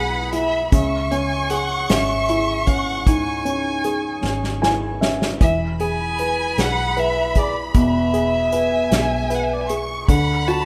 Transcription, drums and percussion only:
0.33 closed hi-hat
0.72 kick, closed hi-hat
1.11 closed hi-hat
1.50 closed hi-hat
1.89 snare, closed hi-hat
2.28 closed hi-hat
2.67 kick, closed hi-hat
3.07 kick, closed hi-hat
3.46 closed hi-hat
3.84 closed hi-hat
4.24 snare
4.44 snare
4.63 snare
5.02 snare
5.22 snare
5.41 kick, closed hi-hat
5.80 closed hi-hat
6.18 closed hi-hat
6.58 snare, closed hi-hat
6.97 closed hi-hat
7.35 kick, closed hi-hat
7.74 kick, closed hi-hat
8.14 closed hi-hat
8.52 closed hi-hat
8.92 snare, closed hi-hat
9.30 closed hi-hat
9.69 closed hi-hat
10.08 kick, closed hi-hat
10.48 closed hi-hat

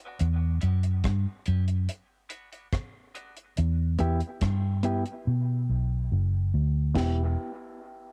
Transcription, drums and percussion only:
0.19 closed hi-hat
0.61 closed hi-hat
0.83 closed hi-hat
1.04 kick, cross-stick, closed hi-hat
1.46 closed hi-hat
1.68 closed hi-hat
1.89 closed hi-hat
2.30 closed hi-hat
2.53 closed hi-hat
2.73 kick, cross-stick, closed hi-hat
3.15 closed hi-hat
3.37 closed hi-hat
3.57 closed hi-hat
3.99 closed hi-hat
4.20 closed hi-hat
4.41 kick, cross-stick, closed hi-hat
4.83 closed hi-hat
5.06 closed hi-hat
6.95 kick, snare, crash

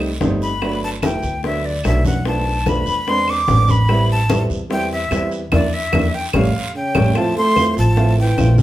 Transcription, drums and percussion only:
0.00 high bongo, high conga, claves
0.21 high bongo, low bongo, high conga, short guiro
0.42 high bongo, short guiro
0.62 high bongo, high conga, long guiro, claves
0.83 high conga
1.02 high bongo, high conga, short guiro, claves
1.23 high conga, short guiro
1.43 high bongo, high conga, long guiro
1.64 high conga
1.83 high bongo, low bongo, high conga, short guiro, claves
2.05 high conga, short guiro
2.25 high bongo, high conga, long guiro
2.46 high bongo, high conga
2.66 high bongo, high conga, short guiro, claves
2.86 high conga, short guiro
3.07 high bongo, high conga, long guiro
3.27 high bongo, high conga, claves
3.48 high bongo, low bongo, high conga, short guiro
3.68 high bongo, high conga, short guiro
3.88 high bongo, high conga, long guiro, claves
4.09 high conga
4.29 high bongo, high conga, short guiro, claves
4.50 high conga, short guiro
4.70 high bongo, high conga, long guiro
4.91 high conga
5.11 high bongo, low bongo, high conga, short guiro, claves
5.31 short guiro
5.52 high bongo, high conga, long guiro, claves
5.93 high bongo, high conga, long guiro, claves
6.33 high bongo, high conga, claves
6.95 high bongo, high conga, long guiro, claves
7.15 high bongo, high conga, long guiro, claves
7.36 high bongo, high conga
7.56 high bongo, high conga, short guiro, claves
7.77 high bongo, high conga, short guiro
7.97 high bongo, high conga, long guiro
8.17 high bongo, high conga
8.38 high bongo, low bongo, high conga, short guiro, claves
8.58 high conga, short guiro

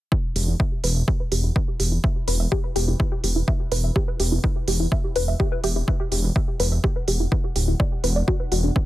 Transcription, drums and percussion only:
0.12 kick
0.36 open hi-hat
0.60 kick
0.84 open hi-hat
1.08 kick
1.32 open hi-hat
1.56 kick
1.80 open hi-hat
2.04 kick
2.28 open hi-hat
2.52 kick
2.76 open hi-hat
3.00 kick
3.24 open hi-hat
3.48 kick
3.72 open hi-hat
3.96 kick
4.20 open hi-hat
4.44 kick
4.68 open hi-hat
4.92 kick
5.16 open hi-hat
5.40 kick
5.64 open hi-hat
5.88 kick
6.12 open hi-hat
6.36 kick
6.60 open hi-hat
6.84 kick
7.08 open hi-hat
7.32 kick
7.56 open hi-hat
7.80 kick
8.04 open hi-hat
8.28 kick
8.52 open hi-hat
8.76 kick

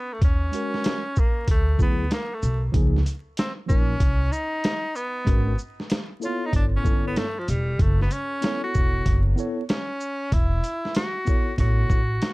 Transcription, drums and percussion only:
0.22 kick, closed hi-hat
0.53 closed hi-hat, shaker
0.74 snare
0.84 snare, closed hi-hat
1.16 kick, shaker
1.48 kick, closed hi-hat
1.79 kick, shaker
2.11 snare, closed hi-hat
2.43 shaker
2.74 kick, closed hi-hat
2.96 snare
3.06 closed hi-hat, shaker
3.37 snare, closed hi-hat
3.69 kick, shaker
4.00 kick, closed hi-hat
4.33 shaker
4.64 snare, closed hi-hat
4.95 shaker
5.27 kick, closed hi-hat
5.58 shaker
5.80 snare
5.90 snare, closed hi-hat
6.22 shaker
6.53 kick, closed hi-hat
6.85 kick, shaker
7.16 snare, closed hi-hat
7.48 closed hi-hat, shaker
7.79 kick, closed hi-hat
8.01 snare
8.11 closed hi-hat, shaker
8.42 snare, closed hi-hat
8.74 kick, shaker
9.06 kick, closed hi-hat
9.38 shaker
9.69 snare, closed hi-hat
10.01 shaker
10.32 kick, closed hi-hat
10.64 closed hi-hat, shaker
10.85 snare
10.95 snare, closed hi-hat
11.27 kick, shaker
11.58 kick, closed hi-hat
11.90 kick, shaker
12.22 snare, closed hi-hat

